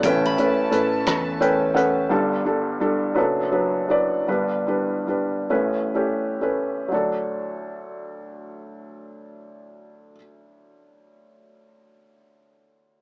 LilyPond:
<<
  \new Staff \with { instrumentName = "Steel-string acoustic guitar" } { \time 6/8 \key d \major \tempo 4. = 46 g''16 b''4.~ b''16 r4 | r2. | r2. | r2. |
r2. | }
  \new Staff \with { instrumentName = "String section" } { \time 6/8 \key d \major <cis' b' a''>2. | r2. | r2. | r2. |
r2. | }
  \new Staff \with { instrumentName = "Felt piano" } { \time 6/8 \key d \major << { <e cis'>2 g''8 fis''8 | r4. a'4 d''8 | r2. | d''2.~ |
d''2. | } \\ { <a b'>8 <a cis' b'>8 <a cis' b'>4 <a cis' b'>8 <a cis' b'>8 | <g d' a'>8 <g d' a'>8 <g d' a'>8 <fis d' b'>8 <fis d' b'>8 <fis d' b'>8 | <g d' b'>8 <g d' b'>8 <g d' b'>8 <a cis' b'>8 <a cis' g'>8 <a cis' b'>8 | <fis d' a'>2.~ |
<fis d' a'>2. | } >> }
  \new Staff \with { instrumentName = "Felt piano" } { \clef bass \time 6/8 \key d \major <a,, a,>2. | <g,, g,>4. <fis,, fis,>4. | <g,, g,>4. <a,, a,>4. | d,2.~ |
d,2. | }
  \new Staff \with { instrumentName = "Fingered electric bass" } { \clef bass \time 6/8 \key d \major a,,8 r8 a,8 e,4. | r2. | r2. | r2. |
r2. | }
  \new DrumStaff \with { instrumentName = "Drums" } \drummode { \time 6/8 <hh bd>8 hh8 hh8 <hh bd ss>8 hh8 hh8 | r4. r4. | r4. r4. | r4. r4. |
r4. r4. | }
>>